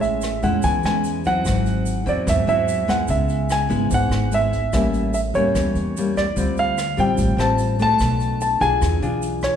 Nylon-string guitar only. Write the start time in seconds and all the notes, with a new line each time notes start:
Already playing: A2 G#3 C#4 E4
0.43 G#3 C#4 E4
0.64 E3
0.85 G#3 C#4 E4
1.26 F#3 C4 E4
1.45 G#2
2.06 F#3 C4 E4
2.26 G#2
2.47 F#3 C4 E4
2.87 G#3 B3 E4
3.10 C#3
3.69 G#3 B3 E4
3.90 G#2
4.32 G#3 B3 E4
4.73 A2 G3 A#3 C#4
5.36 G3 A#3 C#4
5.55 E3
5.98 G3 A#3 C#4
6.36 D3 G3 C4 F4
6.97 G3 C4 F4
7.17 A2
7.38 G3 C4 F4
7.79 A3 D4 F#4
8.01 B2
8.61 D4 F4 G#4
8.81 E3
9.02 D4 F4 G#4